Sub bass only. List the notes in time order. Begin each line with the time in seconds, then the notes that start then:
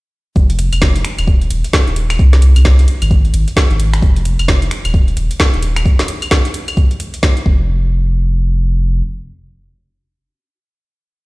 0.36 F1
0.73 F1
1.18 D#1
1.50 D#1
1.87 D#1
2.19 C2
2.56 C2
3.02 G#1
3.34 G#1
3.70 G#1
4.02 F1
4.39 F1
4.85 D#1
5.17 D#1
5.54 D#1
7.46 F1